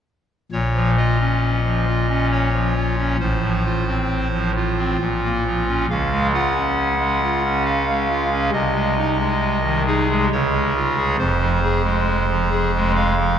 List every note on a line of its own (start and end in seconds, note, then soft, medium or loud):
0.52 3.16 A#1 medium
0.52 3.16 A#2 medium
0.52 0.91 C#5 medium
0.76 0.95 F3 soft
0.97 1.17 F4 medium
0.97 2.27 D#5 medium
1.20 1.60 C#4 soft
1.65 1.84 F3 soft
1.87 2.07 F4 medium
2.09 2.49 C#4 soft
2.32 3.17 C#5 medium
2.54 2.74 F3 soft
2.76 2.95 F4 soft
2.98 3.17 C#4 soft
3.20 4.96 A1 medium
3.20 4.96 A2 medium
3.20 4.51 C5 medium
3.43 3.63 F3 soft
3.65 3.85 F4 medium
3.88 4.28 C4 soft
4.32 4.52 F3 soft
4.56 5.85 F4 medium
4.79 4.97 C4 soft
5.01 5.87 A#1 medium
5.01 5.87 A#2 medium
5.24 5.43 A#3 soft
5.46 5.65 F3 soft
5.68 5.86 C#4 soft
5.90 8.50 C#2 medium
5.90 8.50 C#3 medium
5.90 6.27 F5 medium
6.12 6.31 G#3 soft
6.33 6.53 F4 medium
6.33 7.63 F#5 loud
6.55 6.95 C#4 soft
7.00 7.20 G#3 soft
7.23 7.42 F4 medium
7.45 7.84 C#4 soft
7.66 8.51 F5 medium
7.89 8.08 G#3 soft
8.10 8.29 F4 soft
8.32 8.50 C#4 soft
8.52 10.27 C2 medium
8.52 10.27 C3 medium
8.52 9.82 D#5 medium
8.75 8.94 G#3 soft
8.97 9.17 D#4 soft
9.19 9.59 G#3 soft
9.63 9.84 D#3 soft
9.86 10.07 D#4 soft
9.86 10.25 G#4 loud
10.10 10.29 G#3 soft
10.32 11.17 C#2 medium
10.32 11.17 C#3 medium
10.32 11.17 C#5 loud
10.53 10.73 G#3 medium
10.76 10.95 F4 medium
10.97 11.16 G#4 soft
11.18 13.39 F1 medium
11.18 13.39 F2 medium
11.18 12.92 C5 loud
11.40 11.60 F3 medium
11.62 11.82 G#4 medium
11.84 12.23 G#3 medium
12.29 12.49 F3 medium
12.51 12.71 G#4 medium
12.75 13.14 G#3 soft
12.96 13.39 F5 loud
13.18 13.38 F3 medium